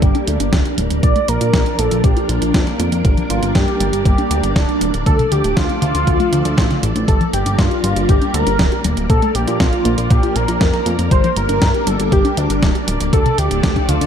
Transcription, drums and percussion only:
0.02 kick, closed hi-hat
0.15 closed hi-hat
0.27 closed hi-hat
0.40 closed hi-hat
0.53 kick, snare, closed hi-hat
0.65 closed hi-hat
0.78 closed hi-hat
0.90 closed hi-hat
1.03 kick, closed hi-hat
1.16 closed hi-hat
1.28 closed hi-hat
1.41 closed hi-hat
1.53 kick, snare, closed hi-hat
1.66 closed hi-hat
1.79 closed hi-hat
1.91 closed hi-hat
2.04 kick, closed hi-hat
2.17 closed hi-hat
2.29 closed hi-hat
2.42 closed hi-hat
2.54 kick, snare, closed hi-hat
2.67 snare, closed hi-hat
2.80 closed hi-hat
2.92 closed hi-hat
3.05 kick, closed hi-hat
3.17 closed hi-hat
3.30 closed hi-hat
3.43 closed hi-hat
3.55 kick, snare, closed hi-hat
3.68 closed hi-hat
3.80 closed hi-hat
3.93 closed hi-hat
4.05 kick, closed hi-hat
4.18 closed hi-hat
4.31 closed hi-hat
4.43 closed hi-hat
4.56 kick, snare, closed hi-hat
4.69 closed hi-hat
4.81 closed hi-hat
4.94 closed hi-hat
5.06 kick, closed hi-hat
5.19 closed hi-hat
5.32 closed hi-hat
5.44 closed hi-hat
5.57 kick, snare, closed hi-hat
5.70 closed hi-hat
5.82 closed hi-hat
5.95 closed hi-hat
6.07 kick, closed hi-hat
6.20 closed hi-hat
6.33 closed hi-hat
6.45 closed hi-hat
6.58 kick, snare, closed hi-hat
6.71 snare, closed hi-hat
6.83 closed hi-hat
6.96 closed hi-hat
7.08 kick, closed hi-hat
7.21 closed hi-hat
7.33 closed hi-hat
7.46 closed hi-hat
7.59 kick, snare, closed hi-hat
7.71 closed hi-hat
7.84 closed hi-hat
7.96 closed hi-hat
8.09 kick, closed hi-hat
8.22 closed hi-hat
8.34 closed hi-hat
8.47 closed hi-hat
8.59 kick, snare, closed hi-hat
8.72 closed hi-hat
8.84 closed hi-hat
8.97 closed hi-hat
9.10 kick, closed hi-hat
9.22 closed hi-hat
9.35 closed hi-hat
9.48 closed hi-hat
9.60 kick, snare, closed hi-hat
9.73 closed hi-hat
9.85 closed hi-hat
9.98 closed hi-hat
10.10 kick, closed hi-hat
10.23 closed hi-hat
10.36 closed hi-hat
10.48 closed hi-hat
10.61 kick, snare, closed hi-hat
10.73 snare, closed hi-hat
10.86 closed hi-hat
10.99 closed hi-hat
11.11 kick, closed hi-hat
11.24 closed hi-hat
11.36 closed hi-hat
11.49 closed hi-hat
11.62 kick, snare, closed hi-hat
11.74 closed hi-hat
11.87 closed hi-hat
12.00 closed hi-hat
12.12 kick, closed hi-hat
12.25 closed hi-hat
12.37 closed hi-hat
12.50 closed hi-hat
12.63 kick, snare, closed hi-hat
12.75 closed hi-hat
12.88 closed hi-hat
13.01 closed hi-hat
13.13 kick, closed hi-hat
13.26 closed hi-hat
13.38 closed hi-hat
13.51 closed hi-hat
13.63 kick, snare, closed hi-hat
13.76 kick, closed hi-hat
13.89 closed hi-hat
14.01 closed hi-hat

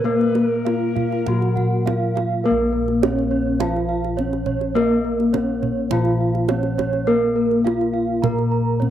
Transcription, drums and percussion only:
0.21 kendang slap
0.35 kendang slap, kendang high
0.66 kendang slap, kendang high
0.96 kendang slap, kendang low
1.12 kendang slap
1.26 kendang low
1.42 kendang slap
1.57 kendang slap, kendang low
1.87 kendang slap, kendang high, kendang low
2.17 kendang slap, kendang high
2.88 kendang slap
3.03 kendang high
3.19 kendang slap
3.60 kendang high, kendang low
3.76 kendang slap
4.04 kendang slap
4.19 kendang low
4.33 kendang slap
4.46 kendang low
4.61 kendang slap
4.76 kendang high
5.20 kendang slap
5.34 kendang high, kendang low
5.63 kendang low
5.91 kendang low
6.05 kendang slap
6.35 kendang slap
6.49 kendang high
6.63 kendang slap
6.79 kendang high, kendang low
6.93 kendang slap
7.51 kendang slap
7.67 kendang high
7.81 kendang slap
8.24 kendang high, kendang low
8.39 kendang slap
8.82 kendang low

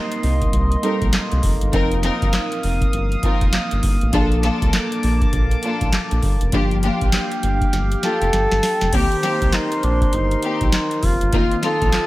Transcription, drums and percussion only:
0.12 closed hi-hat
0.23 open hi-hat
0.41 kick, closed hi-hat
0.53 kick, closed hi-hat
0.72 closed hi-hat
0.83 closed hi-hat
1.01 kick, closed hi-hat
1.13 snare, clap, closed hi-hat
1.32 closed hi-hat
1.43 kick, open hi-hat
1.61 closed hi-hat
1.73 kick, closed hi-hat
1.92 closed hi-hat
2.03 snare, closed hi-hat
2.22 kick, closed hi-hat
2.33 snare, clap, closed hi-hat
2.52 closed hi-hat
2.63 open hi-hat
2.81 kick, closed hi-hat
2.93 closed hi-hat
3.12 closed hi-hat
3.23 kick, closed hi-hat
3.41 kick, closed hi-hat
3.53 snare, clap, closed hi-hat
3.71 closed hi-hat
3.83 kick, open hi-hat
4.01 closed hi-hat
4.13 kick, closed hi-hat
4.32 closed hi-hat
4.43 snare, closed hi-hat
4.62 kick, closed hi-hat
4.73 snare, clap, closed hi-hat
4.92 closed hi-hat
5.03 open hi-hat
5.21 kick, closed hi-hat
5.33 kick, closed hi-hat
5.51 closed hi-hat
5.63 closed hi-hat
5.81 kick, closed hi-hat
5.93 snare, clap, closed hi-hat
6.11 closed hi-hat
6.23 kick, open hi-hat
6.41 closed hi-hat
6.52 kick, closed hi-hat
6.71 closed hi-hat
6.83 closed hi-hat
7.01 kick, closed hi-hat
7.12 snare, clap, closed hi-hat
7.32 closed hi-hat
7.43 closed hi-hat
7.61 kick, closed hi-hat
7.73 snare, closed hi-hat
7.92 closed hi-hat
8.03 snare, closed hi-hat
8.22 closed hi-hat
8.33 snare, closed hi-hat
8.51 snare, closed hi-hat
8.63 snare, open hi-hat
8.81 snare, closed hi-hat
8.93 kick, closed hi-hat, crash
9.12 closed hi-hat
9.23 snare, closed hi-hat
9.42 kick, closed hi-hat
9.52 snare, clap, closed hi-hat
9.72 closed hi-hat
9.83 closed hi-hat
10.01 kick, closed hi-hat
10.13 closed hi-hat
10.31 closed hi-hat
10.43 closed hi-hat
10.61 kick, closed hi-hat
10.72 snare, clap, closed hi-hat
10.91 closed hi-hat
11.03 kick, open hi-hat
11.21 closed hi-hat
11.33 kick, closed hi-hat
11.51 closed hi-hat
11.63 snare, closed hi-hat
11.82 kick, closed hi-hat
11.92 snare, clap, closed hi-hat

